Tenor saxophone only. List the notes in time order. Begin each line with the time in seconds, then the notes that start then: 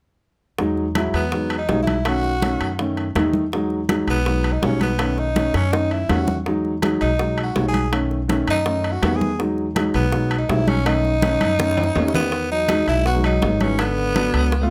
1.15 B3
1.58 D#4
1.82 E4
2.08 F#4
4.10 B3
4.52 D#4
4.64 C#4
4.82 B3
5.19 D#4
5.55 C#4
5.73 D#4
5.92 E4
6.10 F#4
7.01 D#4
7.43 F#4
7.68 G#4
8.50 D#4
8.92 F#4
9.16 G#4
9.95 B3
10.38 D#4
10.50 E4
10.68 C#4
10.87 D#4
12.15 B3
12.52 D#4
12.88 E4
13.07 F#4
13.25 D#4
13.62 C#4
13.80 B3